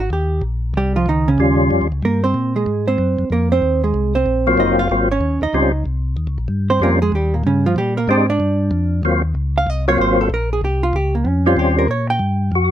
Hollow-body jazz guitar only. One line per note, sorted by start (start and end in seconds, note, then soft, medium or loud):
0.00 0.11 F#4 medium
0.13 0.42 G4 medium
0.77 0.96 G3 medium
0.77 0.96 G4 medium
0.96 1.08 F3 medium
0.96 1.07 F4 medium
1.09 1.28 D#3 medium
1.09 1.28 D#4 medium
1.28 1.68 C#3 medium
1.28 1.68 C#4 medium
2.05 2.24 A#3 medium
2.05 2.23 A#4 medium
2.24 2.53 C4 medium
2.24 2.53 C5 medium
2.56 2.85 G#3 medium
2.56 2.85 G#4 medium
2.88 3.28 C4 medium
2.88 3.28 C5 medium
3.32 3.51 A#3 medium
3.32 3.51 A#4 medium
3.52 3.81 C4 medium
3.52 3.81 C5 loud
3.84 4.13 G#3 medium
3.84 4.13 G#4 medium
4.15 4.56 C4 medium
4.15 4.55 C5 medium
4.60 4.78 D#4 medium
4.60 4.78 D#5 medium
4.79 5.08 F4 medium
4.79 5.08 F5 loud
5.11 5.41 C#4 medium
5.11 5.40 C#5 medium
5.43 5.83 D#4 medium
5.43 5.83 D#5 medium
6.70 6.81 C4 medium
6.70 6.81 C5 medium
6.83 7.02 A#3 medium
6.83 7.01 A#4 medium
7.02 7.13 G#3 medium
7.02 7.13 G#4 medium
7.15 7.34 G3 medium
7.15 7.33 G4 medium
7.34 7.45 A#2 soft
7.34 7.45 A#3 soft
7.46 7.65 C#3 medium
7.46 7.65 C#4 medium
7.66 7.77 F3 medium
7.66 7.77 F4 medium
7.78 7.97 G3 medium
7.78 7.97 G4 medium
7.97 8.09 A#3 medium
7.97 8.08 A#4 medium
8.10 8.29 C4 medium
8.10 8.29 C5 medium
8.30 9.00 D4 medium
8.30 9.00 D5 loud
9.58 9.70 F5 loud
9.70 9.88 D#5 medium
9.88 9.99 C#5 loud
10.01 10.19 C5 medium
10.21 10.31 A4 medium
10.34 10.52 A#4 medium
10.53 10.63 G#4 medium
10.65 10.83 G4 medium
10.83 10.94 F4 medium
10.96 11.14 G4 medium
11.15 11.28 A#3 medium
11.28 11.46 C#4 medium
11.47 11.58 F4 medium
11.59 11.78 G4 medium
11.79 11.90 A#4 medium
11.91 12.09 C#5 medium
12.10 12.71 G5 loud